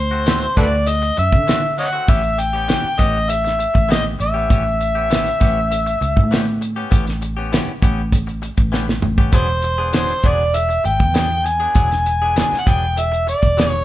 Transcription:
Already playing: D2 C5
0.11 A3 C4 F#4
0.26 E3 A3 C4 F#4, snare, closed hi-hat
0.42 closed hi-hat
0.56 D2 E3 A3 C4 F#4 A4 B4 D5, kick, closed hi-hat
0.87 D#5, muted clean electric guitar stroke, closed hi-hat
1.02 muted clean electric guitar stroke, closed hi-hat
1.17 F#2 E5, muted clean electric guitar stroke, closed hi-hat
1.32 D3, muted clean electric guitar stroke, kick
1.47 E3 A3 C4 F#4, snare, closed hi-hat
1.63 muted clean electric guitar stroke
1.78 C#5 D#5 F#5, muted clean electric guitar stroke, closed hi-hat
1.93 A3 C4 F#4
2.08 A1 E3 B3 C#4 G4 E5, kick, closed hi-hat
2.23 muted clean electric guitar stroke, closed hi-hat
2.38 G5, muted clean electric guitar stroke, closed hi-hat
2.53 B3 C#4 G4
2.68 E3 B3 C#4 G4, snare, closed hi-hat
2.84 muted fingered electric bass stroke
2.98 A1 E3 B3 C#4 G4 D#5, kick, closed hi-hat
3.29 E5, muted clean electric guitar stroke, closed hi-hat
3.44 muted clean electric guitar stroke, snare, closed hi-hat
3.59 muted clean electric guitar stroke, closed hi-hat
3.74 A1, muted clean electric guitar stroke, kick, closed hi-hat
3.89 E3 B3 C#4 G4 D#5, snare, closed hi-hat
4.04 muted clean electric guitar stroke
4.19 A1 E5, muted clean electric guitar stroke, closed hi-hat
4.34 B3 C#4 G4
4.50 A1 E3 B3 C#4 G4, kick, closed hi-hat
4.65 muted clean electric guitar stroke
4.80 muted clean electric guitar stroke, closed hi-hat
4.95 B3 C#4 G4
5.10 E3 B3 C#4 G4, snare, closed hi-hat
5.26 closed hi-hat
5.40 A1 E3 B3 C#4 G4, kick, closed hi-hat
5.71 muted clean electric guitar stroke, closed hi-hat
5.86 muted clean electric guitar stroke, closed hi-hat
6.01 C#2, muted clean electric guitar stroke, closed hi-hat
6.17 A2, muted clean electric guitar stroke, kick
6.31 E3 B3 C#4 G4, snare, closed hi-hat
6.46 muted clean electric guitar stroke
6.61 muted clean electric guitar stroke, closed hi-hat
6.76 B3 C#4 G4
6.91 A1 E3 B3 C#4 G4, kick, closed hi-hat
7.07 muted clean electric guitar stroke, snare, closed hi-hat
7.21 muted clean electric guitar stroke, closed hi-hat
7.37 B3 C#4 G4
7.52 E3 B3 C#4 G4, snare, closed hi-hat
7.67 muted fingered electric bass stroke
7.82 A1 E3 B3 C#4 G4, kick, closed hi-hat
8.12 muted clean electric guitar stroke, kick, closed hi-hat
8.27 muted clean electric guitar stroke, closed hi-hat
8.42 muted clean electric guitar stroke, closed hi-hat
8.57 A1, muted clean electric guitar stroke, kick, closed hi-hat
8.72 E3 B3 C#4 G4, snare
8.88 muted clean electric guitar stroke, snare
9.02 A1, muted clean electric guitar stroke, mid tom
9.18 B3 C#4 G4, kick
9.32 E1 F#3 B3 D4 G#4 C5, kick, closed hi-hat
9.49 muted clean electric guitar stroke
9.62 muted clean electric guitar stroke, closed hi-hat
9.78 B3 D4 G#4
9.93 F#3 B3 D4 G#4 C5, snare, closed hi-hat
10.09 closed hi-hat
10.23 E1 F#3 B3 D4 G#4, kick, closed hi-hat
10.27 D5
10.54 E5, muted clean electric guitar stroke, closed hi-hat
10.69 muted clean electric guitar stroke, closed hi-hat
10.84 G#1 G5, muted clean electric guitar stroke, closed hi-hat
10.99 E2, muted clean electric guitar stroke, kick
11.14 F#3 B3 D4 G#4, snare, closed hi-hat
11.30 muted clean electric guitar stroke
11.45 G#5, muted clean electric guitar stroke, closed hi-hat
11.60 B3 D4 G#4
11.75 E1 F#3 B3 D4 G#4, kick, closed hi-hat
11.91 muted clean electric guitar stroke, snare, closed hi-hat
12.06 muted clean electric guitar stroke, closed hi-hat
12.22 B3 D4 G#4
12.36 F#3 B3 D4 G#4, snare, closed hi-hat
12.52 muted fingered electric bass stroke, snare
12.60 F#5
12.66 E1 F#3 B3 D4 G#4 G5, kick, closed hi-hat
12.96 E5, muted clean electric guitar stroke, closed hi-hat
13.12 muted clean electric guitar stroke, closed hi-hat
13.27 D5, muted clean electric guitar stroke, closed hi-hat
13.42 E1, muted clean electric guitar stroke, kick, closed hi-hat
13.57 F#3 B3 D4 G#4, snare, closed hi-hat
13.69 C#5, muted clean electric guitar stroke

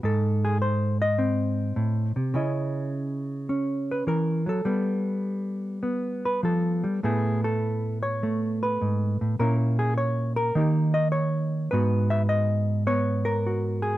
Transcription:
0.03 G#2 A4
0.45 G#4
0.62 C5
1.02 D#5
1.18 C4
1.76 A2
2.16 C3
2.34 C#3 C#4 E4 D#5
3.49 C#4
3.91 B4
4.07 E3 A#4
4.46 F#3 A4
4.65 G3 B3
5.83 B3
6.25 B4
6.43 F3 A4
6.84 G3
7.03 A2 A3 B3 E4 G#4
7.44 A4
8.03 C#5
8.23 A3
8.63 B4
8.82 G#2
9.21 A2
9.39 A#2 A#3 C#4 E4 A#4
9.79 G#4
9.98 C#5
10.36 A#4
10.55 D#3 A#3 D#4 G4
10.94 D#5
11.12 C#5
11.71 G#2 B3 F#4 B4
12.10 E5
12.29 D#5
12.87 B3 C#5
13.25 A#4
13.46 F#4
13.82 G#4

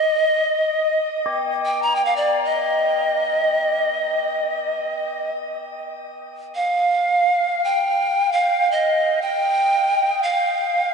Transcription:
Already playing: D#5
1.26 G4
1.65 G5
1.82 A#5
1.96 G5
2.05 F5
2.16 D5
2.45 D#5
6.55 F5
7.64 G5
8.32 F5
8.72 D#5
9.22 G5
10.23 F5

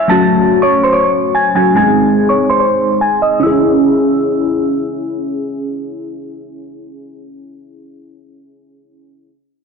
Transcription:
0.08 F#3 A3 C#4 F#4 A5 A6
0.62 C#5 C#6
0.83 C5 C6
0.93 C#5 C#6
1.35 G#5 G#6
1.55 F#3 A3 C#4 F#4 G#5 G#6
1.75 G#3 C4 D#4 G#4 G#5 G#6
2.29 C#5 C#6
2.50 C5 C6
2.60 C5 C6
3.01 G#5 G#6
3.22 D#5 D#6
3.40 C#4 E4 E6
3.46 G#4

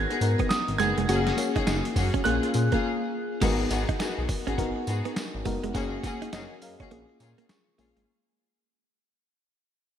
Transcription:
Already playing: B3 D#4 F#4 A#4 G#6
0.10 B3 D#4 F#4 G#4, muted clean electric guitar stroke, closed hi-hat
0.21 G#2 B3 D#4 F#4 A#4, closed hi-hat, tambourine
0.39 B3, kick, closed hi-hat
0.49 D#6, muted clean electric guitar stroke, snare, closed hi-hat, tambourine
0.68 G#1, closed hi-hat
0.78 F#1 G#3 B3 D#4 F#4 G#4 G#6, closed hi-hat, tambourine
0.97 F1 G#3, closed hi-hat
1.08 F#1 A#3 C#4 F#4 G#4, closed hi-hat, tambourine
1.27 snare, closed hi-hat
1.37 A#3 C#4 F#4 G#4, muted clean electric guitar stroke, closed hi-hat, tambourine
1.55 F#1 A#3 C#4 D#4 F#4 G#4, kick, closed hi-hat
1.67 F#1 D#4, snare, closed hi-hat, tambourine
1.85 closed hi-hat
1.95 F#2 A#3 C#4 F#4 G#4, muted clean electric guitar stroke, kick, open hi-hat, tambourine
2.14 C#4, kick, closed hi-hat
2.24 A#1 A#3 C#4 F4 G#4 F#6, closed hi-hat
2.43 muted clean electric guitar stroke, closed hi-hat
2.54 A#2 A#3 C#4 F4 G#4, closed hi-hat, tambourine
2.72 A#3 C#4 F4 G#4, kick, closed hi-hat
3.41 G#1 G#3 B3 D#4 F#4 G#4 A#4, kick, closed hi-hat, crash, tambourine
3.70 G#1 B3 D#4 F#4 G#4, muted clean electric guitar stroke, closed hi-hat, tambourine
3.89 D#4, kick, closed hi-hat
3.99 B3 D#4 F#4 G#4, snare, closed hi-hat, tambourine
4.18 B1
4.29 muted clean electric guitar stroke, kick, open hi-hat, tambourine
4.46 G#1 B3 C#4 D#4 F#4 G#4, closed hi-hat
4.58 G#1 B3 D#4 F#4 A#4, kick, closed hi-hat
4.76 muted clean electric guitar stroke
4.87 G#2 B3 D#4 F#4 G#4, closed hi-hat, tambourine
5.05 B3, closed hi-hat
5.16 muted clean electric guitar stroke, snare, closed hi-hat, tambourine
5.34 G#1
5.45 F#1 G#3 B3 D#4 F#4 A#4, kick, open hi-hat, tambourine
5.63 F1 G#3, closed hi-hat
5.74 F#1 A#3 C#4 F#4 G#4, kick, closed hi-hat, tambourine
6.04 A#3 C#4 F#4 G#4, muted clean electric guitar stroke, kick, closed hi-hat, tambourine
6.22 F#1 D#4, closed hi-hat
6.33 F#1 A#3 C#4 D#4 F#4 G#4 A#4 D#5, snare, closed hi-hat, tambourine
6.62 F#2 A#4 F5, muted clean electric guitar stroke, open hi-hat, tambourine
6.80 A#3 C#4 F#4 G#4 C#5, kick, closed hi-hat
6.91 A#1 A#3 C#4 F4 G#4, closed hi-hat
7.09 muted clean electric guitar stroke
7.20 A#2 A#3 C#4 F4 G#4, closed hi-hat, tambourine
7.38 A#3, closed hi-hat
7.49 C#6, muted clean electric guitar stroke, snare, closed hi-hat, tambourine
7.78 A#1 G#3 A#3 C#4 F4 G#4, open hi-hat, tambourine
7.96 G#1 G#3, closed hi-hat

